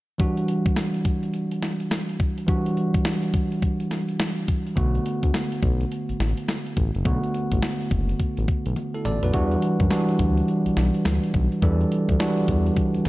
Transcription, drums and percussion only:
0.20 kick loud
0.20 closed hi-hat medium
0.37 closed hi-hat soft
0.48 closed hi-hat medium
0.66 kick medium
0.66 closed hi-hat medium
0.76 snare loud
0.76 closed hi-hat medium
0.94 closed hi-hat medium
1.05 kick medium
1.05 closed hi-hat medium
1.23 closed hi-hat soft
1.34 closed hi-hat medium
1.51 closed hi-hat medium
1.62 snare medium
1.62 closed hi-hat medium
1.80 closed hi-hat medium
1.91 snare loud
1.91 closed hi-hat medium
2.09 closed hi-hat soft
2.20 kick loud
2.20 closed hi-hat medium
2.38 closed hi-hat soft
2.48 kick loud
2.48 closed hi-hat medium
2.66 closed hi-hat soft
2.77 closed hi-hat medium
2.94 kick medium
2.94 closed hi-hat medium
3.05 snare loud
3.05 closed hi-hat medium
3.23 closed hi-hat medium
3.34 kick loud
3.34 closed hi-hat medium
3.52 closed hi-hat soft
3.62 kick medium
3.62 closed hi-hat medium
3.80 closed hi-hat medium
3.91 snare medium
3.91 closed hi-hat medium
4.09 closed hi-hat medium
4.19 snare loud
4.19 closed hi-hat medium
4.38 closed hi-hat soft
4.48 kick loud
4.48 closed hi-hat medium
4.67 closed hi-hat soft
4.77 kick loud
4.77 closed hi-hat medium
4.95 closed hi-hat soft
5.06 closed hi-hat medium
5.23 kick medium
5.23 closed hi-hat medium
5.34 snare loud
5.34 closed hi-hat medium
5.52 closed hi-hat medium
5.63 kick loud
5.63 closed hi-hat medium
5.81 closed hi-hat soft
5.92 closed hi-hat medium
6.09 closed hi-hat medium
6.20 snare medium
6.20 closed hi-hat medium
6.37 closed hi-hat medium
6.48 snare loud
6.48 closed hi-hat medium
6.66 closed hi-hat soft
6.77 kick loud
6.77 closed hi-hat medium
6.95 closed hi-hat soft
7.05 kick loud
7.05 closed hi-hat medium
7.23 closed hi-hat soft
7.34 closed hi-hat medium
7.52 kick medium
7.52 closed hi-hat medium
7.62 snare loud
7.62 closed hi-hat medium
7.81 closed hi-hat medium
7.91 kick medium
7.91 closed hi-hat medium
8.09 closed hi-hat medium
8.20 kick medium
8.20 closed hi-hat medium
8.37 closed hi-hat medium
8.48 kick medium
8.48 closed hi-hat medium
8.66 closed hi-hat medium
8.76 closed hi-hat medium
8.76 high tom medium
8.94 closed hi-hat soft
9.05 closed hi-hat medium
9.05 mid tom medium
9.23 closed hi-hat soft
9.23 floor tom medium
9.33 kick loud
9.33 closed hi-hat medium
9.51 closed hi-hat soft
9.62 closed hi-hat medium
9.80 kick medium
9.80 closed hi-hat medium
9.90 snare loud
9.90 closed hi-hat medium
10.09 closed hi-hat medium
10.19 kick medium
10.19 closed hi-hat medium
10.37 closed hi-hat soft
10.48 closed hi-hat medium
10.66 closed hi-hat medium
10.77 snare medium
10.77 closed hi-hat medium
10.94 closed hi-hat medium
11.05 snare loud
11.05 closed hi-hat medium
11.24 closed hi-hat soft
11.34 kick loud
11.34 closed hi-hat medium
11.52 closed hi-hat soft
11.62 kick loud
11.62 closed hi-hat medium
11.81 closed hi-hat soft
11.92 closed hi-hat medium
12.09 kick medium
12.09 closed hi-hat medium
12.20 snare loud
12.20 closed hi-hat medium
12.38 closed hi-hat medium
12.48 kick medium
12.48 closed hi-hat medium
12.66 closed hi-hat soft
12.77 kick medium
12.77 closed hi-hat medium
12.94 closed hi-hat medium
13.05 snare medium
13.05 closed hi-hat medium

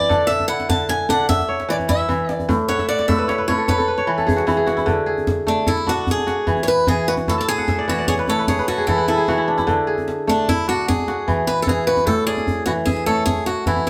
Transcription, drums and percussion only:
0.00 djembe tone medium
0.10 djembe slap soft
0.10 djembe bass medium
0.30 djembe slap medium
0.40 djembe slap soft
0.40 djembe tone medium
0.60 djembe slap medium
0.69 djembe tone medium
0.69 djembe bass medium
0.89 djembe slap medium
0.99 djembe slap soft
1.09 djembe tone medium
1.20 djembe slap soft
1.29 djembe slap medium
1.29 djembe bass medium
1.39 djembe tone medium
1.60 djembe slap medium
1.79 djembe tone medium
1.89 djembe slap soft
1.89 djembe bass medium
1.99 djembe slap medium
2.09 djembe tone medium
2.19 djembe slap soft
2.29 djembe slap medium
2.39 djembe tone medium
2.49 djembe bass medium
2.68 djembe slap medium
2.78 djembe slap soft
2.78 djembe tone medium
2.99 djembe slap medium
3.09 djembe tone medium
3.09 djembe bass medium
3.29 djembe slap medium
3.49 djembe tone medium
3.68 djembe slap medium
3.68 djembe bass medium
3.79 djembe tone medium
3.98 djembe slap soft
4.08 djembe slap soft
4.18 djembe tone soft
4.28 djembe bass medium
4.38 djembe slap medium
4.48 djembe tone medium
4.68 djembe slap medium
4.78 djembe tone medium
4.87 djembe slap soft
4.87 djembe bass medium
5.18 djembe tone soft
5.27 djembe slap medium
5.27 djembe bass medium
5.47 djembe tone medium
5.67 djembe bass medium
5.77 djembe slap soft
5.87 djembe tone medium
5.97 djembe slap soft
6.07 djembe bass medium
6.18 djembe tone medium
6.28 djembe slap medium
6.47 djembe slap soft
6.47 djembe bass medium
6.57 djembe tone soft
6.67 djembe slap medium
6.87 djembe tone medium
6.87 djembe bass medium
7.08 djembe slap soft
7.17 djembe slap medium
7.17 djembe tone soft
7.28 djembe slap soft
7.28 djembe bass medium
7.58 djembe tone soft
7.68 djembe slap medium
7.68 djembe bass medium
7.88 djembe tone medium
8.08 djembe bass medium
8.18 djembe slap soft
8.27 djembe tone medium
8.38 djembe slap soft
8.48 djembe bass medium
8.58 djembe tone medium
8.68 djembe slap medium
8.88 djembe slap soft
8.88 djembe bass medium
9.08 djembe slap medium
9.28 djembe tone medium
9.48 djembe slap soft
9.58 djembe slap soft
9.58 djembe tone medium
9.68 djembe slap soft
9.68 djembe bass medium
9.98 djembe tone soft
10.08 djembe slap medium
10.28 djembe tone medium
10.49 djembe bass medium
10.58 djembe slap soft
10.69 djembe tone medium
10.79 djembe slap soft
10.89 djembe bass medium
10.99 djembe tone medium
11.08 djembe slap medium
11.28 djembe slap soft
11.28 djembe bass medium
11.47 djembe slap medium
11.67 djembe tone medium
11.67 djembe bass medium
11.87 djembe slap soft
11.97 djembe slap soft
11.97 djembe tone medium
12.07 djembe slap soft
12.07 djembe bass medium
12.17 djembe slap soft
12.37 djembe slap soft
12.37 djembe tone soft
12.47 djembe bass medium
12.57 djembe slap soft
12.66 djembe slap soft
12.66 djembe tone medium
12.76 djembe slap soft
12.87 djembe bass medium
12.96 djembe slap medium
13.07 djembe tone medium
13.27 djembe bass medium
13.37 djembe tone soft
13.46 djembe slap medium
13.66 djembe slap soft
13.66 djembe bass medium
13.76 djembe tone soft
13.87 djembe slap medium

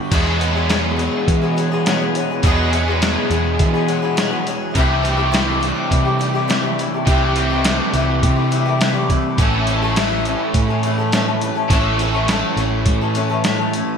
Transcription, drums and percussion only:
0.12 kick loud
0.12 closed hi-hat medium
0.12 crash medium
0.41 closed hi-hat medium
0.69 snare loud
0.69 closed hi-hat medium
0.99 closed hi-hat medium
1.28 kick medium
1.28 closed hi-hat medium
1.58 closed hi-hat medium
1.86 snare loud
1.86 closed hi-hat medium
2.15 closed hi-hat medium
2.43 kick medium
2.43 closed hi-hat medium
2.73 closed hi-hat medium
3.02 snare loud
3.02 closed hi-hat medium
3.31 closed hi-hat medium
3.59 kick medium
3.59 closed hi-hat medium
3.88 closed hi-hat medium
4.17 snare loud
4.17 closed hi-hat medium
4.47 closed hi-hat medium
4.75 kick medium
4.75 closed hi-hat medium
5.05 closed hi-hat medium
5.34 snare loud
5.34 closed hi-hat medium
5.63 closed hi-hat medium
5.91 kick medium
5.91 closed hi-hat medium
6.21 closed hi-hat medium
6.50 snare loud
6.50 closed hi-hat medium
6.79 closed hi-hat medium
7.07 kick medium
7.07 closed hi-hat medium
7.36 closed hi-hat medium
7.64 snare loud
7.64 closed hi-hat medium
7.94 closed hi-hat medium
8.23 kick medium
8.23 closed hi-hat medium
8.52 closed hi-hat medium
8.81 snare loud
8.81 closed hi-hat medium
9.10 kick medium
9.10 closed hi-hat medium
9.38 kick loud
9.38 closed hi-hat medium
9.67 closed hi-hat medium
9.96 snare loud
9.96 closed hi-hat medium
10.25 closed hi-hat medium
10.54 kick medium
10.54 closed hi-hat medium
10.83 closed hi-hat soft
11.12 snare loud
11.12 closed hi-hat medium
11.41 closed hi-hat medium
11.70 kick loud
11.70 closed hi-hat medium
11.99 closed hi-hat medium
12.28 snare loud
12.28 closed hi-hat medium
12.57 closed hi-hat medium
12.86 kick medium
12.86 closed hi-hat medium
13.15 closed hi-hat medium
13.44 snare loud
13.44 closed hi-hat medium
13.73 closed hi-hat medium

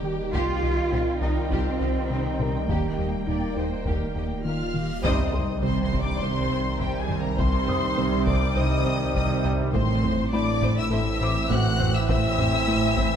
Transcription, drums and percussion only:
0.34 taiko medium
0.92 taiko mid medium
1.51 taiko medium
2.40 taiko mid soft
2.69 taiko medium
3.28 taiko mid soft
3.86 taiko medium
4.75 taiko mid soft
5.04 taiko medium
5.34 taiko low-mid soft
5.93 taiko medium
6.81 taiko medium
7.10 taiko low-mid medium
7.39 taiko medium
7.69 taiko low-mid soft
8.27 taiko medium
9.15 taiko medium
9.45 taiko low-mid medium
9.74 taiko loud
10.03 taiko low-mid medium
10.62 taiko medium
11.51 taiko medium
11.80 taiko low-mid medium
12.09 taiko loud
12.38 taiko low-mid medium
12.97 taiko medium

